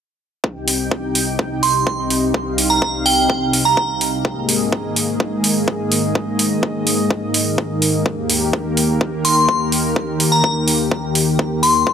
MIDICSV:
0, 0, Header, 1, 4, 480
1, 0, Start_track
1, 0, Key_signature, -3, "minor"
1, 0, Tempo, 476190
1, 443, Time_signature, 4, 2, 24, 8
1, 12029, End_track
2, 0, Start_track
2, 0, Title_t, "Synth bell"
2, 0, Program_c, 0, 98
2, 1640, Note_on_c, 0, 84, 84
2, 2001, Note_off_c, 0, 84, 0
2, 2721, Note_on_c, 0, 82, 81
2, 2918, Note_off_c, 0, 82, 0
2, 3081, Note_on_c, 0, 79, 82
2, 3278, Note_off_c, 0, 79, 0
2, 3682, Note_on_c, 0, 82, 82
2, 4042, Note_off_c, 0, 82, 0
2, 9321, Note_on_c, 0, 84, 82
2, 9682, Note_off_c, 0, 84, 0
2, 10402, Note_on_c, 0, 82, 84
2, 10598, Note_off_c, 0, 82, 0
2, 11721, Note_on_c, 0, 84, 84
2, 12010, Note_off_c, 0, 84, 0
2, 12029, End_track
3, 0, Start_track
3, 0, Title_t, "Analog synth pad"
3, 0, Program_c, 1, 89
3, 440, Note_on_c, 1, 36, 71
3, 441, Note_on_c, 1, 48, 66
3, 441, Note_on_c, 1, 63, 67
3, 441, Note_on_c, 1, 67, 65
3, 441, Note_on_c, 1, 79, 79
3, 2343, Note_off_c, 1, 79, 0
3, 2362, Note_on_c, 1, 77, 78
3, 4243, Note_off_c, 1, 36, 0
3, 4243, Note_off_c, 1, 67, 0
3, 4244, Note_off_c, 1, 48, 0
3, 4244, Note_off_c, 1, 63, 0
3, 4263, Note_off_c, 1, 77, 0
3, 4280, Note_on_c, 1, 44, 71
3, 4280, Note_on_c, 1, 68, 64
3, 4281, Note_on_c, 1, 58, 69
3, 4281, Note_on_c, 1, 75, 81
3, 4282, Note_on_c, 1, 51, 66
3, 8083, Note_off_c, 1, 44, 0
3, 8083, Note_off_c, 1, 68, 0
3, 8083, Note_off_c, 1, 75, 0
3, 8120, Note_on_c, 1, 39, 70
3, 8121, Note_on_c, 1, 67, 66
3, 8121, Note_on_c, 1, 70, 81
3, 11922, Note_off_c, 1, 51, 0
3, 11922, Note_off_c, 1, 58, 0
3, 11923, Note_off_c, 1, 39, 0
3, 11923, Note_off_c, 1, 70, 0
3, 11964, Note_on_c, 1, 43, 71
3, 11964, Note_on_c, 1, 59, 68
3, 11965, Note_on_c, 1, 50, 65
3, 11965, Note_on_c, 1, 74, 82
3, 12029, Note_off_c, 1, 43, 0
3, 12029, Note_off_c, 1, 50, 0
3, 12029, Note_off_c, 1, 59, 0
3, 12029, Note_off_c, 1, 67, 0
3, 12029, Note_off_c, 1, 74, 0
3, 12029, End_track
4, 0, Start_track
4, 0, Title_t, "Drums"
4, 442, Note_on_c, 9, 36, 103
4, 543, Note_off_c, 9, 36, 0
4, 682, Note_on_c, 9, 46, 98
4, 783, Note_off_c, 9, 46, 0
4, 922, Note_on_c, 9, 36, 105
4, 1023, Note_off_c, 9, 36, 0
4, 1161, Note_on_c, 9, 46, 82
4, 1262, Note_off_c, 9, 46, 0
4, 1402, Note_on_c, 9, 36, 109
4, 1502, Note_off_c, 9, 36, 0
4, 1642, Note_on_c, 9, 46, 96
4, 1743, Note_off_c, 9, 46, 0
4, 1882, Note_on_c, 9, 36, 107
4, 1983, Note_off_c, 9, 36, 0
4, 2121, Note_on_c, 9, 46, 82
4, 2222, Note_off_c, 9, 46, 0
4, 2362, Note_on_c, 9, 36, 109
4, 2463, Note_off_c, 9, 36, 0
4, 2602, Note_on_c, 9, 46, 99
4, 2703, Note_off_c, 9, 46, 0
4, 2842, Note_on_c, 9, 36, 109
4, 2943, Note_off_c, 9, 36, 0
4, 3083, Note_on_c, 9, 46, 88
4, 3184, Note_off_c, 9, 46, 0
4, 3322, Note_on_c, 9, 36, 113
4, 3423, Note_off_c, 9, 36, 0
4, 3563, Note_on_c, 9, 46, 97
4, 3663, Note_off_c, 9, 46, 0
4, 3802, Note_on_c, 9, 36, 111
4, 3903, Note_off_c, 9, 36, 0
4, 4043, Note_on_c, 9, 46, 84
4, 4143, Note_off_c, 9, 46, 0
4, 4282, Note_on_c, 9, 36, 113
4, 4383, Note_off_c, 9, 36, 0
4, 4523, Note_on_c, 9, 46, 101
4, 4624, Note_off_c, 9, 46, 0
4, 4763, Note_on_c, 9, 36, 115
4, 4863, Note_off_c, 9, 36, 0
4, 5004, Note_on_c, 9, 46, 88
4, 5105, Note_off_c, 9, 46, 0
4, 5243, Note_on_c, 9, 36, 117
4, 5343, Note_off_c, 9, 36, 0
4, 5483, Note_on_c, 9, 46, 102
4, 5583, Note_off_c, 9, 46, 0
4, 5722, Note_on_c, 9, 36, 116
4, 5823, Note_off_c, 9, 36, 0
4, 5963, Note_on_c, 9, 46, 90
4, 6064, Note_off_c, 9, 46, 0
4, 6202, Note_on_c, 9, 36, 112
4, 6303, Note_off_c, 9, 36, 0
4, 6443, Note_on_c, 9, 46, 100
4, 6544, Note_off_c, 9, 46, 0
4, 6682, Note_on_c, 9, 36, 113
4, 6783, Note_off_c, 9, 36, 0
4, 6922, Note_on_c, 9, 46, 88
4, 7023, Note_off_c, 9, 46, 0
4, 7162, Note_on_c, 9, 36, 113
4, 7263, Note_off_c, 9, 36, 0
4, 7401, Note_on_c, 9, 46, 100
4, 7502, Note_off_c, 9, 46, 0
4, 7642, Note_on_c, 9, 36, 108
4, 7743, Note_off_c, 9, 36, 0
4, 7882, Note_on_c, 9, 46, 87
4, 7983, Note_off_c, 9, 46, 0
4, 8122, Note_on_c, 9, 36, 109
4, 8223, Note_off_c, 9, 36, 0
4, 8362, Note_on_c, 9, 46, 101
4, 8463, Note_off_c, 9, 46, 0
4, 8602, Note_on_c, 9, 36, 110
4, 8702, Note_off_c, 9, 36, 0
4, 8842, Note_on_c, 9, 46, 84
4, 8943, Note_off_c, 9, 46, 0
4, 9082, Note_on_c, 9, 36, 113
4, 9182, Note_off_c, 9, 36, 0
4, 9322, Note_on_c, 9, 46, 96
4, 9423, Note_off_c, 9, 46, 0
4, 9562, Note_on_c, 9, 36, 105
4, 9662, Note_off_c, 9, 36, 0
4, 9801, Note_on_c, 9, 46, 80
4, 9902, Note_off_c, 9, 46, 0
4, 10042, Note_on_c, 9, 36, 105
4, 10143, Note_off_c, 9, 36, 0
4, 10281, Note_on_c, 9, 46, 95
4, 10382, Note_off_c, 9, 46, 0
4, 10522, Note_on_c, 9, 36, 104
4, 10623, Note_off_c, 9, 36, 0
4, 10761, Note_on_c, 9, 46, 83
4, 10862, Note_off_c, 9, 46, 0
4, 11002, Note_on_c, 9, 36, 106
4, 11103, Note_off_c, 9, 36, 0
4, 11242, Note_on_c, 9, 46, 91
4, 11342, Note_off_c, 9, 46, 0
4, 11482, Note_on_c, 9, 36, 108
4, 11583, Note_off_c, 9, 36, 0
4, 11723, Note_on_c, 9, 46, 81
4, 11824, Note_off_c, 9, 46, 0
4, 11962, Note_on_c, 9, 36, 104
4, 12029, Note_off_c, 9, 36, 0
4, 12029, End_track
0, 0, End_of_file